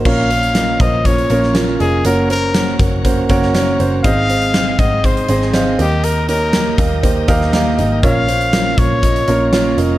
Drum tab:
CC |x---------------|----------------|----------------|----------------|
HH |--xxx-x-xxx-x-x-|x-x-x-x-x-x-x-x-|x-xxx-x-xxx-x-x-|x-x-x-x-x-x-x-x-|
SD |----o------oo---|----o------oo---|----o------oo---|----o------oo---|
BD |o-----o-o-------|------o-o-o-----|o-----o-o-------|------o-o-o-----|

CC |----------------|
HH |x-xxx-x-xxx-x-x-|
SD |----o-------o---|
BD |o-----o-o-------|